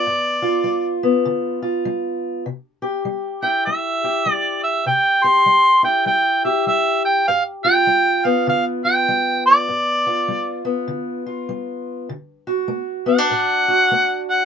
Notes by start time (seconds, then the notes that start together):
Already playing: B3 D5
0.06 G2
0.42 F4
0.64 G3
1.03 B3
1.25 D3
1.62 F4
1.85 G3
2.46 C3
2.82 G4
3.05 G3
3.42 E4 G5
3.66 G3 E5
4.04 G4
4.26 G3
4.33 D5
4.64 E5
4.86 C3 G5
5.24 G4 C6
5.46 G3
5.83 E4 G5
6.06 G3 G5
6.45 G4 E5
6.67 G3 E5
7.05 G5
7.28 G2 F5
7.64 F4 G5
7.87 G3
8.25 B3 F5
8.47 D3 F5
8.85 F4 G5
9.08 G3
9.46 D5
9.68 G2
10.07 F4
10.28 G3
10.65 B3
10.88 D3
11.26 F4
11.49 G3
12.09 D3
12.47 F#4
12.68 A3
13.06 B3 F#5
13.18 D4
13.30 A2
13.68 F#4
13.91 A3
14.30 F#5